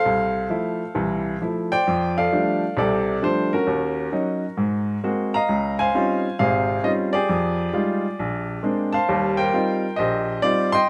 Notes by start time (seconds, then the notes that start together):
Already playing: A4 C5 F5
0.06 C2
0.49 F3 A3 E4
0.95 C2 E3
1.42 F3 A3 E4
1.72 C5 D5 G5
1.87 F2
2.18 A4 D5 F5
2.32 F3 G3 A3 D4
2.77 C2 C3 G4 A4 D5
3.22 F3 G3 A3 D4 C5
3.53 C#4 F#4 A#4
3.67 D#2
4.12 F#3 C#4 D#4
4.57 G#2
5.04 G#3 A#3 C4 F#4
5.34 D#5 F5 A#5
5.49 C#2
5.79 C5 F5 G#5
5.95 G3 C4 C#4 D#4 F4
6.39 G#1 C3 G#4 C5 F5
6.83 G3 C4 C#4 D#4 F4 D#5
7.13 G4 G#4 D5
7.29 F2
7.73 G3 G#3 D#4 F4
8.19 A#1
8.63 G#3 A#3 C4 D4
8.93 C5 F5 A5
9.09 D#2 G3
9.37 A#4 C5 G5
9.53 G3 C4 D#4 F4
9.96 A#1 G4 C5 D#5
10.42 G3 C4 D#4 F4 D5
10.72 D#5 G5 C6